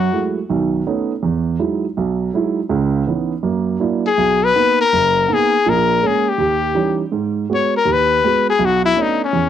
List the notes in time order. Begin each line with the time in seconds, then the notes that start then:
Already playing: F#4
0.13 F#3 G#3 A3 E4
0.49 B1 D#3
0.87 A3 B3 C#4 D#4
1.23 E2
1.59 F#3 G#3 D#4 E4
1.97 B1
2.34 F#3 G#3 D#4 E4
2.69 C#2 C#3
3.07 E3 B3 C#4 D#4
3.43 F#2 A#3
3.80 F#3 A#3 D4 E4
4.07 G#4
4.18 B1
4.44 B4
4.55 A#3 B3 D#4
4.81 A#4
4.93 F#1
5.28 A#3 B3 D#4
5.33 G#4
5.66 A#1 A#2 A#4
6.02 G#3 A#3 C#4
6.07 G#4
6.29 G4
6.38 D#2
6.74 E3 G3 C#4 D#4
7.12 G#2
7.49 G#3 B3 F#4
7.54 C#5
7.77 A#4
7.85 D#2
7.93 B4
8.24 G#3 B3 F#4
8.50 G#4
8.59 B1
8.65 F#4
8.85 E4
8.96 A3 B3 C#4 D4
9.02 D#4
9.24 C#4
9.33 E2